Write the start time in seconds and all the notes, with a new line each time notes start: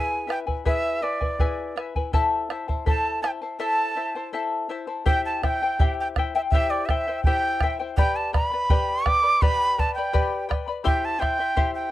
Already playing: E4 G#4 B4 E5 G#5
0.27 E4 B4 E5 G5 G#5, bombo rim
0.47 E4 B4 G#5, bombo low
0.65 E4 G#4 B4 E5 G#5, bombo low
1.02 E4 B4 D5 E5 G#5
1.21 E4 B4 G#5, bombo low
1.39 E4 G#4 B4 E5 G#5, bombo low
1.76 E4 B4 E5 G#5, bombo rim
1.96 E4 B4 G#5, bombo low
2.13 E4 A4 C5 E5 A5, bombo low
2.50 E4 C5 E5 A5, bombo rim
2.68 E4 C5 A5, bombo low
2.86 E4 A4 C5 E5 A5, bombo low
3.22 E4 C5 E5 G5 A5, bombo rim
3.42 E4 C5 A5
3.59 E4 A4 C5 E5 A5
3.96 E4 C5 E5 A5
4.15 E4 C5 A5
4.33 E4 A4 C5 E5 A5
4.69 E4 C5 E5 A5
4.87 E4 C5 A5
5.06 E4 G4 C5 E5 G5, bombo low
5.25 A5
5.43 E4 C5 E5 G5, bombo rim, bombo low
5.62 E4 C5 G5
5.79 E4 G4 C5 E5 G5, bombo low
6.00 G5
6.16 E4 C5 E5 G5, bombo rim, bombo low
6.35 E4 C5 E5 G5
6.51 E4 G4 C5 E5, bombo low
6.55 G5
6.70 D5
6.86 E5, bombo rim, bombo low
6.90 E4 C5 G5
7.08 E4 C5 G5
7.24 E4 G4 C5 E5 G5, bombo low
7.61 E4 C5 E5 G5, bombo rim, bombo low
7.79 E4 C5 G5
7.97 G4 B4 D5 G5 B5, bombo low
8.16 A5
8.33 B4 D5 G5 B5, bombo rim, bombo low
8.51 B4 D5 B5
8.70 G4 B4 D5 G5 B5, bombo low
9.05 B4 D5 G5 B5 D6, bombo rim, bombo low
9.23 B4 D5 B5
9.42 G4 B4 D5 G5 B5, bombo low
9.78 B4 D5 G5 A5 B5, bombo low
9.95 D5 G5 B5
9.99 B4
10.13 G4 B4 D5 G5 B5, bombo low
10.49 B4 D5 G5 B5, bombo rim, bombo low
10.68 B4 D5 B5
10.84 E4 G4 C5 E5 G5 C6, bombo low
11.05 A5
11.20 E4 C5 E5 G5 C6, bombo rim, bombo low
11.39 E4 E5 C6
11.56 E4 G4 C5 E5 C6, bombo low
11.75 G5